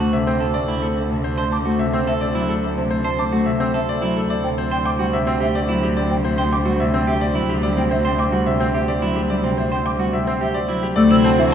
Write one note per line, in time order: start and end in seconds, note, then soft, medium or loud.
0.00 4.15 D2 medium
0.00 0.11 C3 medium
0.00 1.65 A3 medium
0.00 0.17 F#4 medium
0.13 1.09 C3 medium
0.13 0.31 E5 medium
0.27 0.45 C4 medium
0.27 0.45 C5 medium
0.27 0.33 E6 medium
0.40 0.59 A4 medium
0.54 0.73 D5 medium
0.68 0.87 E4 medium
0.82 1.01 A4 medium
1.10 1.78 C3 medium
1.10 1.16 A5 medium
1.24 1.42 C5 medium
1.38 1.56 C5 medium
1.38 1.44 A5 medium
1.52 1.70 A5 medium
1.52 1.58 D6 medium
1.66 3.31 A3 medium
1.66 1.84 F#4 medium
1.79 2.76 C3 medium
1.79 1.98 E5 medium
1.93 2.12 C4 medium
1.93 2.12 C5 medium
1.93 1.99 E6 medium
2.07 2.26 A4 medium
2.07 2.14 E5 medium
2.21 2.39 D5 medium
2.35 4.01 F#3 medium
2.35 2.53 E4 medium
2.49 2.67 A4 medium
2.77 3.45 C3 medium
2.77 2.83 A5 medium
2.91 3.09 C5 medium
3.04 3.23 C5 medium
3.04 3.10 A5 medium
3.18 3.37 A5 medium
3.18 3.24 D6 medium
3.32 4.32 A3 medium
3.32 3.51 F#4 medium
3.46 4.32 C3 medium
3.46 3.64 E5 medium
3.60 3.78 C4 medium
3.60 3.78 C5 medium
3.60 3.66 E6 medium
3.74 3.92 A4 medium
3.74 3.80 E5 medium
3.89 4.07 D5 medium
4.02 4.32 F#3 medium
4.02 4.20 E4 medium
4.17 4.34 A4 medium
4.29 10.81 D2 medium
4.29 4.48 D5 medium
4.43 5.12 C3 medium
4.43 4.49 G5 medium
4.58 4.76 C5 medium
4.71 4.90 C5 medium
4.71 4.78 G5 medium
4.85 5.03 G5 medium
4.85 4.91 D6 medium
4.99 6.64 G3 medium
4.99 5.17 F#4 medium
4.99 5.06 F#5 medium
5.13 6.09 C3 medium
5.13 5.31 E5 medium
5.27 5.45 C4 medium
5.27 5.45 C5 medium
5.27 5.33 E6 medium
5.41 5.59 G4 medium
5.41 5.47 E5 medium
5.55 5.73 D5 medium
5.69 7.34 F#3 medium
5.69 5.87 E4 medium
5.83 6.01 G4 medium
5.97 6.15 D5 medium
6.10 6.78 C3 medium
6.10 6.16 G5 medium
6.25 6.42 C5 medium
6.38 6.56 C5 medium
6.38 6.44 G5 medium
6.52 6.70 G5 medium
6.52 6.58 D6 medium
6.65 7.61 G3 medium
6.65 6.84 F#4 medium
6.65 6.72 F#5 medium
6.79 7.75 C3 medium
6.79 6.98 E5 medium
6.93 7.12 C4 medium
6.93 7.12 C5 medium
6.93 6.99 E6 medium
7.07 7.26 G4 medium
7.07 7.13 E5 medium
7.21 7.39 D5 medium
7.35 9.01 F#3 medium
7.35 7.53 E4 medium
7.49 7.67 G4 medium
7.63 8.31 G3 medium
7.63 7.81 D5 medium
7.77 8.45 C3 medium
7.77 7.95 C4 medium
7.77 7.83 G5 medium
7.91 8.09 C5 medium
7.91 7.97 E5 medium
8.05 8.23 C5 medium
8.05 8.11 G5 medium
8.19 8.37 G5 medium
8.19 8.25 D6 medium
8.32 9.28 G3 medium
8.32 8.51 F#4 medium
8.32 8.39 F#5 medium
8.46 9.42 C3 medium
8.46 8.65 E5 medium
8.60 8.78 C4 medium
8.60 8.78 C5 medium
8.60 8.66 E6 medium
8.74 8.92 G4 medium
8.74 8.80 E5 medium
8.88 9.06 D5 medium
9.02 10.67 F#3 medium
9.02 9.20 E4 medium
9.16 9.34 G4 medium
9.30 9.98 G3 medium
9.30 9.48 D5 medium
9.43 10.12 C3 medium
9.43 9.62 C4 medium
9.43 9.50 G5 medium
9.58 9.76 C5 medium
9.58 9.64 E5 medium
9.72 9.90 C5 medium
9.72 9.78 G5 medium
9.85 10.04 G5 medium
9.85 9.91 D6 medium
9.99 10.98 G3 medium
9.99 10.17 F#4 medium
9.99 10.06 F#5 medium
10.13 10.99 C3 medium
10.13 10.31 E5 medium
10.27 10.45 C4 medium
10.27 10.45 C5 medium
10.27 10.33 E6 medium
10.41 10.59 G4 medium
10.41 10.47 E5 medium
10.54 10.73 D5 medium
10.69 11.54 F#3 medium
10.69 10.87 E4 medium
10.83 11.01 G4 medium
10.96 11.54 D2 medium
10.96 11.54 A3 loud
10.96 11.54 C4 medium
10.96 11.54 F#4 medium
10.96 11.14 D5 loud
10.96 11.02 E6 medium
11.11 11.54 C3 medium
11.11 11.29 E4 loud
11.11 11.17 E6 loud
11.24 11.43 C4 medium
11.24 11.42 C5 medium
11.24 11.31 A5 medium
11.38 11.54 E3 loud
11.38 11.44 E5 medium